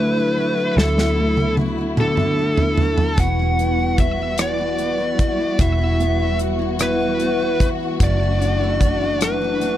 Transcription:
Already playing: D2 D3 F#3 A3 E4 F#4 B4
0.17 E4
0.38 F#4
0.57 E4
0.77 D2 D3 B3 A4, snare
0.97 E4, snare
1.17 A3
1.37 E4, high tom
1.57 F#4, high tom
1.78 E4
1.97 D3 A4, mid tom
2.17 E4, mid tom
2.39 A3
2.57 E4, floor tom
2.77 F#4, floor tom
2.98 E4, floor tom
3.17 E1 E3 G3 F#4 F#5, kick, closed hi-hat
3.39 E4
3.59 B3, closed hi-hat
3.79 E4
3.98 F#4 E5, kick, closed hi-hat
4.19 E4
4.38 E3 D5, cross-stick, closed hi-hat
4.58 E4
4.78 B3, closed hi-hat
4.98 E4
5.18 F#4, kick, closed hi-hat
5.38 E4
5.59 E1 E3 E5, kick, closed hi-hat
5.79 E4
6.00 B3, closed hi-hat
6.19 E4
6.39 F#4, closed hi-hat
6.59 E4
6.79 E3 B4, cross-stick, closed hi-hat
7.00 E4
7.20 B3, closed hi-hat
7.40 E4
7.60 F#4, kick, closed hi-hat
7.80 E4
8.00 F#1 F#2 A3 D4 D5, kick, closed hi-hat
8.20 E4
8.41 D4, closed hi-hat
8.61 E4
8.81 F#4, kick, closed hi-hat
9.01 E4
9.21 F#2 B4, cross-stick, closed hi-hat
9.42 E4
9.61 D4, closed hi-hat

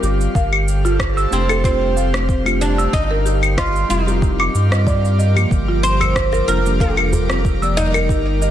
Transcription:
Already playing: G3 C4 F4 G4 A#4 D5 F5
0.03 G1 G4, cabasa
0.21 cabasa
0.35 G1 F5, kick, cabasa
0.53 A4, claves
0.59 C5
0.68 cabasa
0.85 F4, cabasa
1.00 kick, cross-stick, cabasa
1.17 E6, cabasa
1.31 F1 A3 C4 D4 G4, cabasa
1.48 A3 D4 G4 A4, cabasa, claves
1.64 C4 F4, kick, cabasa
1.96 F5, cabasa
2.12 A3 D4 F4, cross-stick, cabasa
2.29 kick, cabasa
2.44 A3 D4 F4 G4, cabasa, claves
2.61 D4, cabasa
2.78 E6, cabasa
2.93 G1 D#4, kick, cabasa
3.10 A#4
3.24 G4 D6, cabasa
3.43 cabasa, claves
3.58 F4 D#5, kick, cross-stick, cabasa
3.76 cabasa
3.89 F1 G3 C4 D#4 F4, cabasa
4.06 G3 C4 F4 G4, cabasa
4.22 kick, cabasa
4.40 D6, claves
4.55 G2, cabasa
4.70 G3 C4 F4 D#5, cross-stick, cabasa
4.87 D5, kick, cabasa
5.05 cabasa
5.19 D#5, cabasa
5.34 F3 A#3 G4, cabasa, claves
5.38 F4
5.51 G1, kick, cabasa
5.68 F4
5.83 C5, cabasa
6.00 E6, djembe tone, cabasa, claves
6.16 kick, cross-stick, cabasa
6.32 A#4, djembe slap, djembe tone, cabasa
6.47 F1 F3 A#3 D4 F4 A#4, djembe slap, cabasa
6.65 F3 A#3 D4, cabasa
6.80 F4 F5, kick, djembe tone, cabasa
6.97 djembe slap, claves
7.13 djembe bass, cabasa
7.29 F3 A#3 C4 F4, cross-stick, cabasa
7.45 kick, cabasa
7.61 F3 A#3 D5 E6, cabasa
7.77 D#4, djembe slap, djembe tone, cabasa
7.94 A#4, djembe slap, cabasa, claves
8.09 G1 G4, kick, cabasa
8.42 D#5, cabasa

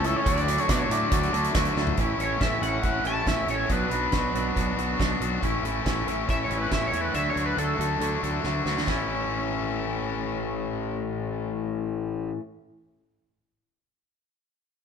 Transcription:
Already playing: C#2
0.04 A2 E3 A3 C#4 E4 A4 E5, closed hi-hat
0.16 C#4 C#5
0.25 D2 D3 F#3 A3 D4 E4 F#4 D5, kick, closed hi-hat
0.37 closed hi-hat
0.46 D3 F#3 A3 D4 E4 F#4, closed hi-hat
0.58 C#4 C#5, closed hi-hat
0.68 B2 D3 F#3 A3 D4 E4 F#4 D5, kick, snare, closed hi-hat
0.79 C#4 C#5
0.89 A2 D3 F#3 A3 D4 E4 F#4 D5, closed hi-hat
1.11 D2 D3 F#3 A3 D4 E4 F#4, kick, closed hi-hat
1.23 closed hi-hat
1.33 D2 D3 F#3 A3 D4 E4 F#4, closed hi-hat
1.44 closed hi-hat
1.54 D2 D3 F#3 A3 D4 E4 F#4, kick, snare, closed hi-hat
1.65 closed hi-hat
1.76 D2 D3 F#3 A3 D4 E4 F#4, snare
1.87 floor tom
1.97 A1 A2 E3 A3 C#4 E4, kick, closed hi-hat
2.18 A1 A2 E3 A3 C#4 E4 C#5, closed hi-hat
2.40 A1 A2 E3 A3 C#4 E4 E5, kick, snare, closed hi-hat
2.62 A1 A2 E3 A3 C#4 E4 F#5, closed hi-hat
2.83 A1 A2 E3 A3 C#4 E4, kick, closed hi-hat
3.05 A1 A2 E3 A3 C#4 E4 A5, closed hi-hat
3.26 A1 A2 E3 A3 C#4 E4 E5, kick, snare, closed hi-hat
3.47 A1 A2 E3 A3 C#4 E4 C#5, closed hi-hat
3.69 B1 B2 F#3 B3 D4 F#4 B4, kick, closed hi-hat
3.90 B1 B2 F#3 B3 D4 F#4, closed hi-hat
4.12 B1 B2 F#3 B3 D4 F#4, kick, snare, closed hi-hat
4.34 B1 B2 F#3 B3 D4 F#4, closed hi-hat
4.56 B1 B2 F#3 B3 D4 F#4, kick, closed hi-hat
4.77 B1 B2 F#3 B3 D4 F#4, closed hi-hat
4.99 B1 B2 F#3 B3 D4 F#4, kick, snare, closed hi-hat
5.21 B1 B2 F#3 B3 D4 F#4, closed hi-hat
5.42 A1 A2 E3 A3 C#4 E4, kick, closed hi-hat
5.63 A1 A2 E3 A3 C#4 E4, closed hi-hat
5.85 A1 A2 E3 A3 C#4 E4, kick, snare, closed hi-hat
6.07 A1 A2 E3 A3 C#4 E4, closed hi-hat
6.27 A1 A2 E3 A3 C#4 E4 E5, kick, closed hi-hat
6.44 C#5
6.50 A1 A2 E3 A3 C#4 E4, closed hi-hat
6.58 B4
6.71 A1 A2 E3 A3 C#4 E4 E5, kick, snare, closed hi-hat
6.87 C#5
6.91 E2 A2 E3 A3 C#4 E4, closed hi-hat
7.01 B4
7.14 D2 D3 F#3 A3 D4 E4 F#4 E5, closed hi-hat
7.30 C#5
7.35 D2 D3 F#3 A3 D4 E4 F#4, closed hi-hat
7.46 B4
7.56 D2 D3 F#3 A3 D4 E4 F#4 A4, closed hi-hat
7.78 D2 D3 F#3 A3 D4 E4 F#4, closed hi-hat
7.99 D2 D3 F#3 A3 D4 E4 F#4, closed hi-hat
8.23 D2 D3 F#3 A3 D4 E4 F#4, closed hi-hat
8.44 D2 D3 F#3 A3 D4 E4 F#4, snare
8.65 D2 D3 F#3 A3 D4 E4 F#4, snare
8.78 snare
8.87 A1 A2 E3 A3 C#4, kick, snare, ride bell
8.91 E4

